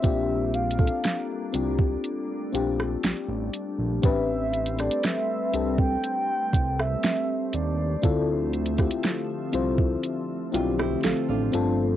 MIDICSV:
0, 0, Header, 1, 7, 480
1, 0, Start_track
1, 0, Tempo, 1000000
1, 17, Time_signature, 4, 2, 24, 8
1, 5744, End_track
2, 0, Start_track
2, 0, Title_t, "Soft synth lead"
2, 0, Program_c, 0, 80
2, 0, Note_on_c, 0, 76, 99
2, 262, Note_on_c, 0, 77, 95
2, 270, Note_off_c, 0, 76, 0
2, 740, Note_off_c, 0, 77, 0
2, 1942, Note_on_c, 0, 76, 109
2, 2302, Note_on_c, 0, 74, 93
2, 2309, Note_off_c, 0, 76, 0
2, 2422, Note_on_c, 0, 76, 110
2, 2429, Note_off_c, 0, 74, 0
2, 2777, Note_off_c, 0, 76, 0
2, 2780, Note_on_c, 0, 79, 124
2, 3264, Note_on_c, 0, 76, 110
2, 3271, Note_off_c, 0, 79, 0
2, 3619, Note_off_c, 0, 76, 0
2, 3622, Note_on_c, 0, 74, 96
2, 4080, Note_off_c, 0, 74, 0
2, 5744, End_track
3, 0, Start_track
3, 0, Title_t, "Nylon-string guitar"
3, 0, Program_c, 1, 24
3, 5057, Note_on_c, 1, 65, 79
3, 5060, Note_on_c, 1, 62, 67
3, 5171, Note_off_c, 1, 65, 0
3, 5173, Note_off_c, 1, 62, 0
3, 5177, Note_on_c, 1, 67, 92
3, 5180, Note_on_c, 1, 64, 80
3, 5291, Note_off_c, 1, 67, 0
3, 5293, Note_off_c, 1, 64, 0
3, 5299, Note_on_c, 1, 69, 85
3, 5302, Note_on_c, 1, 65, 79
3, 5411, Note_off_c, 1, 65, 0
3, 5412, Note_off_c, 1, 69, 0
3, 5417, Note_on_c, 1, 65, 78
3, 5420, Note_on_c, 1, 62, 64
3, 5645, Note_off_c, 1, 65, 0
3, 5647, Note_off_c, 1, 62, 0
3, 5744, End_track
4, 0, Start_track
4, 0, Title_t, "FM electric piano"
4, 0, Program_c, 2, 5
4, 0, Control_c, 2, 64, 127
4, 11, Note_on_c, 2, 60, 97
4, 16, Note_on_c, 2, 62, 90
4, 20, Note_on_c, 2, 65, 85
4, 24, Control_c, 2, 64, 0
4, 24, Note_on_c, 2, 67, 108
4, 111, Control_c, 2, 64, 127
4, 300, Note_off_c, 2, 60, 0
4, 303, Note_off_c, 2, 62, 0
4, 305, Note_off_c, 2, 65, 0
4, 307, Note_off_c, 2, 67, 0
4, 372, Note_on_c, 2, 60, 66
4, 377, Note_on_c, 2, 62, 60
4, 381, Note_on_c, 2, 65, 58
4, 385, Note_on_c, 2, 69, 76
4, 661, Note_off_c, 2, 60, 0
4, 663, Note_off_c, 2, 62, 0
4, 666, Note_off_c, 2, 65, 0
4, 667, Note_off_c, 2, 69, 0
4, 732, Note_on_c, 2, 60, 77
4, 736, Note_on_c, 2, 62, 67
4, 741, Note_on_c, 2, 65, 70
4, 745, Note_on_c, 2, 67, 83
4, 1116, Note_off_c, 2, 60, 0
4, 1118, Note_off_c, 2, 62, 0
4, 1121, Note_off_c, 2, 65, 0
4, 1123, Note_off_c, 2, 67, 0
4, 1212, Note_on_c, 2, 60, 86
4, 1216, Note_on_c, 2, 62, 84
4, 1220, Note_on_c, 2, 65, 83
4, 1225, Note_on_c, 2, 67, 102
4, 1787, Note_off_c, 2, 60, 0
4, 1789, Note_off_c, 2, 62, 0
4, 1791, Note_off_c, 2, 65, 0
4, 1794, Note_off_c, 2, 67, 0
4, 1931, Note_on_c, 2, 60, 95
4, 1935, Note_on_c, 2, 62, 85
4, 1940, Note_on_c, 2, 67, 93
4, 1944, Control_c, 2, 64, 0
4, 1944, Note_on_c, 2, 71, 108
4, 2034, Control_c, 2, 64, 127
4, 2220, Note_off_c, 2, 60, 0
4, 2222, Note_off_c, 2, 62, 0
4, 2225, Note_off_c, 2, 67, 0
4, 2227, Note_off_c, 2, 71, 0
4, 2290, Note_on_c, 2, 60, 69
4, 2294, Note_on_c, 2, 62, 59
4, 2298, Note_on_c, 2, 67, 59
4, 2303, Note_on_c, 2, 69, 72
4, 2580, Note_off_c, 2, 60, 0
4, 2582, Note_off_c, 2, 62, 0
4, 2584, Note_off_c, 2, 67, 0
4, 2586, Note_off_c, 2, 69, 0
4, 2651, Note_on_c, 2, 60, 74
4, 2655, Note_on_c, 2, 62, 67
4, 2660, Note_on_c, 2, 67, 72
4, 2664, Note_on_c, 2, 69, 83
4, 3417, Note_off_c, 2, 60, 0
4, 3419, Note_off_c, 2, 62, 0
4, 3422, Note_off_c, 2, 67, 0
4, 3424, Note_off_c, 2, 69, 0
4, 3850, Note_on_c, 2, 60, 92
4, 3854, Note_on_c, 2, 64, 89
4, 3859, Note_on_c, 2, 65, 90
4, 3863, Note_on_c, 2, 69, 105
4, 3864, Control_c, 2, 64, 0
4, 3962, Control_c, 2, 64, 127
4, 4140, Note_off_c, 2, 60, 0
4, 4142, Note_off_c, 2, 64, 0
4, 4144, Note_off_c, 2, 65, 0
4, 4146, Note_off_c, 2, 69, 0
4, 4211, Note_on_c, 2, 60, 80
4, 4214, Note_on_c, 2, 64, 72
4, 4219, Note_on_c, 2, 65, 73
4, 4223, Note_on_c, 2, 67, 84
4, 4500, Note_off_c, 2, 60, 0
4, 4502, Note_off_c, 2, 64, 0
4, 4504, Note_off_c, 2, 65, 0
4, 4507, Note_off_c, 2, 67, 0
4, 4570, Note_on_c, 2, 60, 88
4, 4574, Note_on_c, 2, 64, 83
4, 4579, Note_on_c, 2, 65, 86
4, 4583, Note_on_c, 2, 72, 99
4, 4955, Note_off_c, 2, 60, 0
4, 4957, Note_off_c, 2, 64, 0
4, 4960, Note_off_c, 2, 65, 0
4, 4962, Note_off_c, 2, 72, 0
4, 5051, Note_on_c, 2, 60, 96
4, 5055, Note_on_c, 2, 64, 86
4, 5060, Note_on_c, 2, 65, 84
4, 5064, Note_on_c, 2, 67, 104
4, 5525, Note_off_c, 2, 60, 0
4, 5531, Note_on_c, 2, 60, 104
4, 5533, Note_off_c, 2, 65, 0
4, 5535, Note_on_c, 2, 62, 91
4, 5536, Note_off_c, 2, 64, 0
4, 5539, Note_on_c, 2, 65, 93
4, 5541, Note_off_c, 2, 67, 0
4, 5543, Control_c, 2, 64, 0
4, 5543, Note_on_c, 2, 69, 114
4, 5638, Control_c, 2, 64, 127
4, 5744, Note_off_c, 2, 60, 0
4, 5744, Note_off_c, 2, 62, 0
4, 5744, Note_off_c, 2, 65, 0
4, 5744, Note_off_c, 2, 69, 0
4, 5744, End_track
5, 0, Start_track
5, 0, Title_t, "Ambient pad"
5, 0, Program_c, 3, 92
5, 0, Note_on_c, 3, 55, 89
5, 18, Note_on_c, 3, 62, 88
5, 19, Note_on_c, 3, 58, 72
5, 969, Note_off_c, 3, 58, 0
5, 979, Note_on_c, 3, 57, 75
5, 1918, Note_off_c, 3, 55, 0
5, 1919, Note_off_c, 3, 62, 0
5, 1936, Note_on_c, 3, 55, 85
5, 1936, Note_on_c, 3, 60, 91
5, 3838, Note_off_c, 3, 55, 0
5, 3858, Note_on_c, 3, 50, 79
5, 3858, Note_on_c, 3, 53, 95
5, 3858, Note_on_c, 3, 76, 72
5, 5519, Note_off_c, 3, 57, 0
5, 5521, Note_off_c, 3, 50, 0
5, 5521, Note_off_c, 3, 76, 0
5, 5538, Note_on_c, 3, 55, 89
5, 5744, Note_off_c, 3, 53, 0
5, 5744, Note_off_c, 3, 55, 0
5, 5744, Note_off_c, 3, 60, 0
5, 5744, End_track
6, 0, Start_track
6, 0, Title_t, "Analog synth bass"
6, 0, Program_c, 4, 38
6, 19, Note_on_c, 4, 34, 113
6, 430, Note_off_c, 4, 34, 0
6, 739, Note_on_c, 4, 36, 93
6, 944, Note_off_c, 4, 36, 0
6, 1218, Note_on_c, 4, 34, 99
6, 1424, Note_off_c, 4, 34, 0
6, 1458, Note_on_c, 4, 33, 53
6, 1506, Note_off_c, 4, 33, 0
6, 1577, Note_on_c, 4, 33, 102
6, 1680, Note_off_c, 4, 33, 0
6, 1818, Note_on_c, 4, 34, 94
6, 1921, Note_off_c, 4, 34, 0
6, 1938, Note_on_c, 4, 33, 110
6, 2349, Note_off_c, 4, 33, 0
6, 2658, Note_on_c, 4, 36, 103
6, 2863, Note_off_c, 4, 36, 0
6, 3135, Note_on_c, 4, 36, 94
6, 3342, Note_off_c, 4, 36, 0
6, 3618, Note_on_c, 4, 39, 89
6, 3823, Note_off_c, 4, 39, 0
6, 3857, Note_on_c, 4, 38, 114
6, 4269, Note_off_c, 4, 38, 0
6, 4577, Note_on_c, 4, 36, 94
6, 4783, Note_off_c, 4, 36, 0
6, 5058, Note_on_c, 4, 35, 104
6, 5263, Note_off_c, 4, 35, 0
6, 5299, Note_on_c, 4, 33, 50
6, 5347, Note_off_c, 4, 33, 0
6, 5418, Note_on_c, 4, 33, 93
6, 5521, Note_off_c, 4, 33, 0
6, 5539, Note_on_c, 4, 31, 97
6, 5744, Note_off_c, 4, 31, 0
6, 5744, End_track
7, 0, Start_track
7, 0, Title_t, "Drums"
7, 18, Note_on_c, 9, 36, 117
7, 19, Note_on_c, 9, 42, 73
7, 66, Note_off_c, 9, 36, 0
7, 67, Note_off_c, 9, 42, 0
7, 259, Note_on_c, 9, 42, 42
7, 307, Note_off_c, 9, 42, 0
7, 339, Note_on_c, 9, 42, 55
7, 379, Note_on_c, 9, 36, 99
7, 387, Note_off_c, 9, 42, 0
7, 419, Note_on_c, 9, 42, 76
7, 427, Note_off_c, 9, 36, 0
7, 467, Note_off_c, 9, 42, 0
7, 498, Note_on_c, 9, 42, 82
7, 504, Note_on_c, 9, 38, 112
7, 546, Note_off_c, 9, 42, 0
7, 552, Note_off_c, 9, 38, 0
7, 739, Note_on_c, 9, 42, 80
7, 787, Note_off_c, 9, 42, 0
7, 858, Note_on_c, 9, 36, 97
7, 906, Note_off_c, 9, 36, 0
7, 979, Note_on_c, 9, 42, 63
7, 1027, Note_off_c, 9, 42, 0
7, 1223, Note_on_c, 9, 42, 78
7, 1271, Note_off_c, 9, 42, 0
7, 1343, Note_on_c, 9, 37, 93
7, 1391, Note_off_c, 9, 37, 0
7, 1457, Note_on_c, 9, 42, 80
7, 1462, Note_on_c, 9, 38, 127
7, 1505, Note_off_c, 9, 42, 0
7, 1510, Note_off_c, 9, 38, 0
7, 1697, Note_on_c, 9, 42, 76
7, 1745, Note_off_c, 9, 42, 0
7, 1937, Note_on_c, 9, 36, 126
7, 1937, Note_on_c, 9, 42, 82
7, 1985, Note_off_c, 9, 36, 0
7, 1985, Note_off_c, 9, 42, 0
7, 2177, Note_on_c, 9, 42, 45
7, 2225, Note_off_c, 9, 42, 0
7, 2237, Note_on_c, 9, 42, 55
7, 2285, Note_off_c, 9, 42, 0
7, 2297, Note_on_c, 9, 42, 61
7, 2303, Note_on_c, 9, 37, 67
7, 2345, Note_off_c, 9, 42, 0
7, 2351, Note_off_c, 9, 37, 0
7, 2357, Note_on_c, 9, 42, 73
7, 2405, Note_off_c, 9, 42, 0
7, 2416, Note_on_c, 9, 42, 82
7, 2422, Note_on_c, 9, 38, 118
7, 2464, Note_off_c, 9, 42, 0
7, 2470, Note_off_c, 9, 38, 0
7, 2657, Note_on_c, 9, 42, 79
7, 2705, Note_off_c, 9, 42, 0
7, 2776, Note_on_c, 9, 36, 95
7, 2824, Note_off_c, 9, 36, 0
7, 2898, Note_on_c, 9, 42, 65
7, 2946, Note_off_c, 9, 42, 0
7, 3135, Note_on_c, 9, 36, 86
7, 3140, Note_on_c, 9, 42, 70
7, 3183, Note_off_c, 9, 36, 0
7, 3188, Note_off_c, 9, 42, 0
7, 3261, Note_on_c, 9, 37, 95
7, 3309, Note_off_c, 9, 37, 0
7, 3375, Note_on_c, 9, 42, 81
7, 3380, Note_on_c, 9, 38, 127
7, 3423, Note_off_c, 9, 42, 0
7, 3428, Note_off_c, 9, 38, 0
7, 3615, Note_on_c, 9, 42, 74
7, 3663, Note_off_c, 9, 42, 0
7, 3856, Note_on_c, 9, 36, 121
7, 3856, Note_on_c, 9, 42, 78
7, 3904, Note_off_c, 9, 36, 0
7, 3904, Note_off_c, 9, 42, 0
7, 4096, Note_on_c, 9, 42, 44
7, 4144, Note_off_c, 9, 42, 0
7, 4156, Note_on_c, 9, 42, 57
7, 4204, Note_off_c, 9, 42, 0
7, 4215, Note_on_c, 9, 42, 66
7, 4217, Note_on_c, 9, 36, 91
7, 4221, Note_on_c, 9, 37, 69
7, 4263, Note_off_c, 9, 42, 0
7, 4265, Note_off_c, 9, 36, 0
7, 4269, Note_off_c, 9, 37, 0
7, 4275, Note_on_c, 9, 42, 76
7, 4323, Note_off_c, 9, 42, 0
7, 4335, Note_on_c, 9, 42, 85
7, 4342, Note_on_c, 9, 38, 110
7, 4383, Note_off_c, 9, 42, 0
7, 4390, Note_off_c, 9, 38, 0
7, 4575, Note_on_c, 9, 42, 77
7, 4623, Note_off_c, 9, 42, 0
7, 4696, Note_on_c, 9, 36, 93
7, 4744, Note_off_c, 9, 36, 0
7, 4817, Note_on_c, 9, 42, 66
7, 4865, Note_off_c, 9, 42, 0
7, 5062, Note_on_c, 9, 42, 77
7, 5110, Note_off_c, 9, 42, 0
7, 5182, Note_on_c, 9, 37, 100
7, 5230, Note_off_c, 9, 37, 0
7, 5296, Note_on_c, 9, 42, 77
7, 5302, Note_on_c, 9, 38, 127
7, 5344, Note_off_c, 9, 42, 0
7, 5350, Note_off_c, 9, 38, 0
7, 5537, Note_on_c, 9, 42, 70
7, 5585, Note_off_c, 9, 42, 0
7, 5744, End_track
0, 0, End_of_file